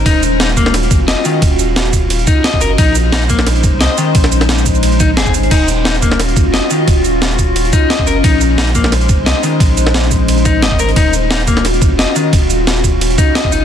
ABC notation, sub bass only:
X:1
M:4/4
L:1/16
Q:"Swing 16ths" 1/4=176
K:Ebdor
V:1 name="Sub bass" clef=bass
E,,,8- E,,,2 B,,, F,,,2 z3 | E,,,8- E,,,2 z4 G,,,2 | B,,,8- B,,,2 F,,, C,,2 z3 | B,,,12 F,,,2 A,,,2 |
E,,,8- E,,,2 B,,, F,,,2 z3 | E,,,8- E,,,2 z4 G,,,2 | B,,,8- B,,,2 F,,, C,,2 z3 | B,,,12 F,,,2 A,,,2 |
E,,,8- E,,,2 B,,, F,,,2 z3 | E,,,8- E,,,2 z4 G,,,2 |]